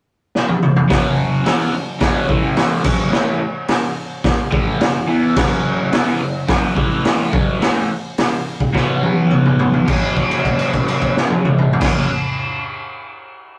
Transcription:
0.35 snare
0.48 high tom
0.62 mid tom
0.76 floor tom
0.89 F#2 C#3 F#3, kick, snare, open hi-hat
1.44 E3 B3 E4, snare, open hi-hat
1.72 F#2 C#3
1.99 F#2 C#3 F#3, kick, snare, open hi-hat
2.28 A2 E3 A3, kick
2.56 snare, open hi-hat
2.83 F#2 C#3 F#3, kick, crash
3.11 A2 E3 A3, snare
3.68 snare, open hi-hat
4.24 kick, snare, open hi-hat
4.51 A2 E3 A3, kick
4.79 F#2 C#3, snare, open hi-hat
5.07 E3 B3 E4
5.36 F#2 C#3 F#3, kick, snare, crash
5.92 E3 B3 E4, snare, open hi-hat
6.20 F#2 C#3
6.47 F#2 C#3 F#3, kick, snare, open hi-hat
6.76 A2 E3 A3, kick
7.05 snare, open hi-hat
7.32 F#2 C#3 F#3, kick
7.60 A2 E3 A3, snare, open hi-hat
8.18 snare, open hi-hat
8.60 kick
8.73 B2 F#3 B3, kick, snare
9.03 high tom
9.31 mid tom
9.45 mid tom
9.59 floor tom
9.73 floor tom
9.86 F#2 C#3 F#3 A#3, kick, crash
9.90 C#4
10.16 kick, crash
10.31 crash
10.45 kick, crash
10.59 crash
10.73 kick, crash
10.88 crash
11.01 kick, crash
11.17 snare
11.30 high tom
11.45 mid tom
11.58 mid tom
11.73 floor tom
11.80 F#2 C#3 F#3 A#3, kick, snare, crash
11.84 C#4

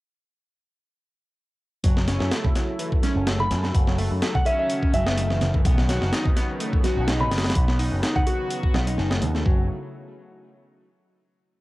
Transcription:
1.83 F#1 C#3 F#3 A3 E4, kick, closed hi-hat
1.97 snare
2.08 C#4, snare, closed hi-hat
2.20 F#2, snare
2.32 A3, snare, closed hi-hat
2.44 kick, low conga
2.55 F#3, snare, closed hi-hat
2.79 E3, closed hi-hat
2.92 kick
3.03 C#4, snare, closed hi-hat, high conga
3.16 F#1
3.27 A3, snare, closed hi-hat
3.40 B5, high bongo, low conga
3.51 F#2, snare, closed hi-hat
3.64 snare, high bongo
3.74 F#1 D#3, kick, closed hi-hat
3.87 F#3, snare
3.98 A3, open hi-hat
4.11 F#2
4.22 A3, snare, closed hi-hat
4.35 F#5, kick, low conga
4.45 C#4 E5, closed hi-hat, high bongo
4.59 E5
4.70 closed hi-hat
4.83 kick
4.93 F#1 F#3 E5, closed hi-hat, high conga
5.06 B3, snare
5.17 A3, closed hi-hat
5.30 E3, snare
5.41 snare, closed hi-hat, low conga
5.54 E3, kick, high bongo
5.65 B1 F#3 B3, kick, closed hi-hat
5.78 snare
5.89 F#4, snare, closed hi-hat
6.02 F#1, snare
6.13 D#4, snare, closed hi-hat
6.25 kick, low conga
6.36 B3, snare, closed hi-hat
6.60 A3, closed hi-hat
6.73 kick
6.83 F#4, snare, closed hi-hat, high conga
6.97 B1
7.08 D#4, snare, closed hi-hat
7.20 B5, high bongo, low conga
7.31 F#1, snare, closed hi-hat
7.38 snare, closed hi-hat
7.44 snare, closed hi-hat, high bongo
7.50 snare, closed hi-hat
7.55 B1, kick, closed hi-hat
7.68 B3, snare
7.79 D#4, open hi-hat
7.92 F#1
8.03 D#4, snare, closed hi-hat
8.16 F#5, kick, low conga
8.27 F#4, closed hi-hat, high bongo
8.51 closed hi-hat
8.63 kick
8.74 B1 B3, snare, high conga
8.87 D#4, closed hi-hat
8.98 F#1 D#4, snare
9.11 A3, snare
9.22 D#2, closed hi-hat, low conga
9.35 A3, snare, high bongo
9.46 F#1 F#3, kick

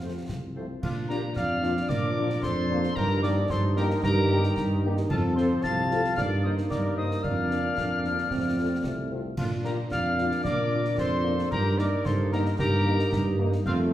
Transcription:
Already playing: F2 F4 F5
0.02 F3 A3 C4 F4 A4 C5
0.29 C2, concert bass drum, snare
0.55 F3 A3 C4 F4 A4 C5
0.82 A#2 F3 D4 F4 F5, concert bass drum, crash
1.08 A#3 D4 F4 G4 A#4 A#5, snare
1.36 F2 D5 F5 F6, concert bass drum, snare
1.63 A#3 D4 F4, snare
1.77 snare
1.89 A#2 A#4 D5 D6, concert bass drum, snare
2.17 A#3 D4 F4
2.30 snare
2.42 F2 A4 C5 C6, concert bass drum, snare
2.70 A#3 D4 F4
2.83 snare
2.96 G2 D#4 G4 A#4 A#5, concert bass drum, crash
3.22 A#3 D#4 G4 A#4 D5 D6, snare
3.50 G2 A4 C5 C6, concert bass drum, snare
3.76 A#3 D#4 G4 A#4 A#5, snare
3.90 snare
4.03 G2 D#3 G4 A#4 A#5, concert bass drum, snare
4.31 A#3 D#4 G4
4.43 snare
4.57 G2, concert bass drum, snare
4.84 A#3 D#4 G4
4.97 snare
5.09 F2 F3 C4 F4 A4 A5, concert bass drum, crash
5.35 C4 F4 A4 C5 C6, snare
5.63 C2 F5 A5 A6, concert bass drum, snare
5.91 C4 F4 A4, snare
6.04 snare
6.16 G2 A#3 D#4 D5 F5 F6, concert bass drum, snare
6.43 A#3 D#4 A#4 C5 D#5 D#6
6.58 snare
6.70 G2 A#4 D5 D6, concert bass drum, snare
6.97 A#3 D#4 A#4 C5 D#5 D#6
7.11 snare
7.23 F2 D4 D5 F5 F6, concert bass drum, crash
7.51 A#3 D4 A#4, snare
7.77 F2 D3, concert bass drum, snare
8.04 F3 A#3 D4 A#4, snare
8.18 snare
8.30 F2 A3 C4, concert bass drum, snare
8.58 A3 C4 F4
8.84 C2 A3, concert bass drum, snare
9.11 A3 C4 F4
9.37 A#2 A#3 D4 F4 F5, concert bass drum, crash
9.64 A#3 D4 F4 G4 A#4 A#5, snare
9.90 F2 D5 F5 F6, concert bass drum, snare
10.18 A#3 D4 F4, snare
10.31 snare
10.44 A#2 A#4 D5 D6, concert bass drum, snare
10.72 A#3 D4 F4
10.85 snare
10.98 F2 A4 C5 C6, concert bass drum, snare
11.24 A#3 D4 F4
11.39 snare
11.51 G2 A#3 D#4 G4 A#4 A#5, concert bass drum, crash
11.78 A#3 D#4 A#4 D5 D6, snare
12.05 G2 A4 C5 C6, concert bass drum, snare
12.32 A#3 D#4 G4 A#4 A#5, snare
12.45 snare
12.59 G2 G4 A#4 A#5, concert bass drum, snare
12.86 A#3 D#4
12.99 snare
13.12 G2, concert bass drum, snare
13.39 A#3 D#4
13.52 snare
13.65 F2 A3 C4 F4 F5, concert bass drum, crash

